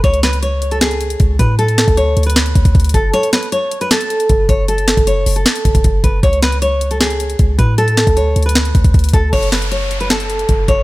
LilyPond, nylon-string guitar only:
\new Staff \with { instrumentName = "Nylon-string guitar" } { \time 4/4 \key fis \minor \tempo 4 = 155 cis''8 b'8 cis''8. a'16 gis'4. b'8 | a'4 cis''8. b'4.~ b'16 a'8 | cis''8 b'8 cis''8. b'16 a'4. cis''8 | a'4 cis''8. a'4.~ a'16 b'8 |
cis''8 b'8 cis''8. a'16 gis'4. b'8 | a'4 cis''8. b'4.~ b'16 a'8 | cis''8 b'8 cis''8. b'16 a'4. cis''8 | }